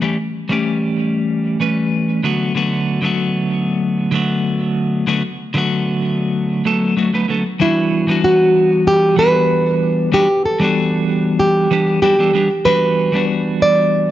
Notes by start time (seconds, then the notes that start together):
0.02 E3 G3 A3 C#4 G4
0.49 E3 G3 A3 C#4 G4
1.60 E3 G3 A3 C#4 B4
2.23 D3 F#3 A3 B3 F#4
2.55 D3 F#3 A3 B3 F#4
3.01 D3 F#3 A3 B3
3.06 F#4
4.11 D3 F#3 A3 B3 F#4
5.07 D3 F#3 A3 B3 F#4
5.54 D3 F#3 A3 B3 F#4
6.65 D3 F#3 A3 B3 A4
6.97 D3 F#3 A3 B3 F#4
7.13 D3 F#3 A3 B3 B4
7.28 D3 F#3 A3 B3 A4
7.60 E3 G3 B3 D4 E4 F#4
8.07 E3 G3 B3 D4
8.11 F#4
8.24 F#4
8.87 G4
9.16 E3 G3 B3 D4 B4
9.21 F#4
10.12 E3 G3 B3 D4 F#4 G4
10.45 A4
10.60 E3 G3 B3 D4
10.64 F#4
11.39 G4
11.71 E3 G3 B3 D4 G4
12.02 E3 G3 B3 D4 F#4 G4
12.18 E3 G3 B3 D4 A4
12.33 E3 G3 B3 D4 G4
12.65 E3 G3 B3 D4 F#4 B4
13.12 E3 G3 B3 D4
13.16 F#4
13.62 D5